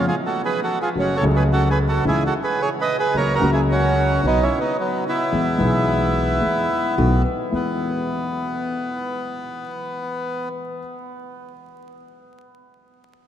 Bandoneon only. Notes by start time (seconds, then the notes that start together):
0.07 F4 G#4
0.26 F#4 A4
0.45 G#4 B4
0.63 F#4 A4
0.82 F4 G#4
0.99 C#4 F#4
1.16 A4 C#5
1.36 G#4 B4
1.53 F#4 A4
1.70 G#4 B4
1.88 F#4 A4
2.08 E4 G#4
2.26 F#4 A4
2.44 G#4 B4
2.61 G#4 C#5
2.81 B4 D#5
2.99 G#4 B4
3.17 A#4 C#5
3.34 F#4 A#4
3.52 E4 G#4
3.71 C#4 F#4
4.26 B3 D#4
4.43 C#4 E4
4.60 B3 D#4
4.80 F#3 B3
5.08 B3 E4
7.55 B3